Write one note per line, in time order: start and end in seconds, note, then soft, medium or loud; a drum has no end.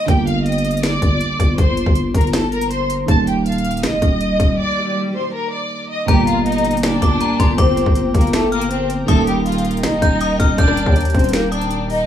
0.06 0.98 G1 loud
0.06 3.03 D3 medium
0.06 3.04 G3 medium
0.06 0.25 G4 medium
0.06 0.25 G5 loud
0.06 kick loud
0.06 closed hi-hat medium
0.10 3.05 A#3 medium
0.27 0.44 F5 medium
0.27 0.44 F6 medium
0.27 closed hi-hat medium
0.46 0.81 D#5 medium
0.46 0.81 D#6 medium
0.46 closed hi-hat medium
0.52 closed hi-hat medium
0.58 closed hi-hat medium
0.65 closed hi-hat medium
0.71 closed hi-hat medium
0.77 closed hi-hat medium
0.83 1.54 D5 medium
0.83 1.55 D6 medium
0.83 finger snap loud
0.83 snare loud
0.83 closed hi-hat medium
1.02 1.20 G1 loud
1.02 kick medium
1.02 closed hi-hat medium
1.21 closed hi-hat medium
1.40 1.58 G1 loud
1.40 kick loud
1.40 closed hi-hat medium
1.58 1.85 G1 loud
1.58 1.94 C5 medium
1.58 1.94 C6 medium
1.58 kick loud
1.58 closed hi-hat medium
1.77 closed hi-hat medium
1.86 2.13 G1 loud
1.86 kick loud
1.95 closed hi-hat medium
2.15 3.05 G1 loud
2.15 2.31 A#4 medium
2.15 2.32 A#5 medium
2.15 kick loud
2.15 closed hi-hat medium
2.21 closed hi-hat medium
2.27 closed hi-hat soft
2.33 2.50 A4 medium
2.33 2.50 A5 medium
2.33 finger snap medium
2.33 snare loud
2.33 closed hi-hat medium
2.52 2.69 A#4 medium
2.52 2.69 A#5 medium
2.52 closed hi-hat medium
2.61 closed hi-hat medium
2.71 2.87 C5 medium
2.71 2.88 C6 medium
2.71 closed hi-hat medium
2.90 closed hi-hat medium
3.06 3.85 D#1 loud
3.06 6.03 D#3 medium
3.06 6.04 G3 medium
3.06 3.25 A4 medium
3.06 3.25 A5 loud
3.06 kick loud
3.06 closed hi-hat medium
3.06 swell medium
3.10 6.05 A#3 medium
3.27 3.44 G4 medium
3.27 3.44 G5 medium
3.27 closed hi-hat medium
3.46 3.81 F5 medium
3.46 3.81 F6 medium
3.46 closed hi-hat medium
3.52 closed hi-hat medium
3.58 closed hi-hat medium
3.65 closed hi-hat medium
3.71 closed hi-hat medium
3.77 closed hi-hat medium
3.83 3.94 A#1 loud
3.83 4.54 D#5 medium
3.83 4.55 D#6 medium
3.83 finger snap medium
3.83 snare loud
3.83 closed hi-hat medium
3.93 4.02 D#1 loud
4.02 4.38 D#1 loud
4.02 kick loud
4.02 closed hi-hat medium
4.21 closed hi-hat medium
4.40 4.58 D#1 loud
4.40 kick loud
4.40 closed hi-hat medium
4.58 4.94 D5 loud
4.58 4.94 D6 medium
5.14 5.31 C5 medium
5.14 5.31 C6 medium
5.33 5.50 A#4 medium
5.33 5.50 A#5 medium
5.52 5.88 D5 medium
5.52 5.88 D6 medium
5.89 6.06 D#5 medium
5.89 6.06 D#6 medium
6.06 6.98 G1 loud
6.06 9.03 A#2 medium
6.06 9.04 G3 medium
6.06 6.25 G3 medium
6.06 9.05 A#3 medium
6.06 6.25 G4 loud
6.06 9.05 G4 medium
6.06 12.04 A#4 medium
6.06 12.06 G5 medium
6.06 6.98 A#5 medium
6.06 kick loud
6.06 closed hi-hat medium
6.10 9.05 A#3 medium
6.27 6.44 F4 medium
6.27 6.44 F5 medium
6.27 closed hi-hat medium
6.46 6.81 D#4 medium
6.46 6.81 D#5 medium
6.46 closed hi-hat medium
6.52 closed hi-hat medium
6.58 closed hi-hat medium
6.65 closed hi-hat medium
6.71 closed hi-hat medium
6.77 closed hi-hat medium
6.83 7.54 D4 medium
6.83 7.55 D5 medium
6.83 finger snap loud
6.83 snare loud
6.83 closed hi-hat medium
7.02 7.20 G1 loud
7.02 7.20 D6 medium
7.02 kick loud
7.02 closed hi-hat medium
7.21 7.39 A#5 medium
7.21 closed hi-hat medium
7.40 7.58 G1 loud
7.40 7.57 C6 medium
7.40 kick loud
7.40 closed hi-hat medium
7.58 7.85 G1 loud
7.58 7.94 C4 loud
7.58 7.94 C5 medium
7.58 8.48 D6 loud
7.58 kick loud
7.58 closed hi-hat medium
7.77 closed hi-hat medium
7.86 8.13 G1 loud
7.86 kick medium
7.95 closed hi-hat medium
8.14 9.05 G1 loud
8.14 8.31 A#3 medium
8.14 8.32 A#4 medium
8.14 kick loud
8.14 closed hi-hat medium
8.21 closed hi-hat medium
8.27 closed hi-hat soft
8.33 8.50 A3 medium
8.33 8.50 A4 medium
8.33 finger snap loud
8.33 snare loud
8.33 closed hi-hat medium
8.52 8.69 A#3 loud
8.52 8.69 A#4 medium
8.52 8.70 F6 medium
8.52 closed hi-hat medium
8.61 closed hi-hat medium
8.71 8.87 C4 medium
8.71 8.88 C5 medium
8.71 closed hi-hat medium
8.90 closed hi-hat medium
9.06 9.85 D#1 loud
9.06 12.03 D#3 medium
9.06 12.05 D#3 medium
9.06 12.04 G3 medium
9.06 9.25 A3 medium
9.06 12.06 G4 medium
9.06 9.25 A4 loud
9.06 9.98 D#6 loud
9.06 kick loud
9.06 closed hi-hat medium
9.10 12.05 A#3 medium
9.27 9.44 G3 medium
9.27 9.44 G4 medium
9.27 closed hi-hat medium
9.46 9.81 F4 medium
9.46 9.82 F5 medium
9.46 closed hi-hat medium
9.52 closed hi-hat medium
9.58 closed hi-hat medium
9.65 closed hi-hat medium
9.71 closed hi-hat medium
9.77 closed hi-hat medium
9.83 9.94 A#1 loud
9.83 10.54 D#4 medium
9.83 10.55 D#5 medium
9.83 finger snap loud
9.83 snare loud
9.83 closed hi-hat medium
9.93 10.02 D#1 loud
10.02 10.38 D#1 loud
10.02 10.20 G6 medium
10.02 kick loud
10.02 closed hi-hat medium
10.21 10.39 D#6 medium
10.21 closed hi-hat medium
10.40 10.58 D#1 loud
10.40 10.57 F6 medium
10.40 kick loud
10.40 closed hi-hat medium
10.58 10.85 D#1 loud
10.58 10.94 D4 loud
10.58 10.94 D5 medium
10.58 11.48 G6 loud
10.58 kick loud
10.58 closed hi-hat medium
10.68 cross-stick loud
10.77 closed hi-hat medium
10.86 11.13 D#2 loud
10.86 kick loud
10.96 closed hi-hat medium
11.01 closed hi-hat medium
11.05 closed hi-hat medium
11.10 closed hi-hat medium
11.14 12.05 D#1 loud
11.14 11.31 C4 medium
11.14 11.31 C5 medium
11.14 kick loud
11.14 closed hi-hat soft
11.19 closed hi-hat medium
11.24 closed hi-hat medium
11.29 closed hi-hat medium
11.33 11.50 A#3 medium
11.33 11.50 A#4 medium
11.33 finger snap loud
11.33 snare loud
11.33 closed hi-hat medium
11.52 11.88 D4 medium
11.52 11.88 D5 medium
11.52 11.70 D#6 medium
11.52 closed hi-hat medium
11.61 closed hi-hat medium
11.71 closed hi-hat medium
11.90 12.06 D#4 medium
11.90 12.06 D#5 medium
11.90 open hi-hat medium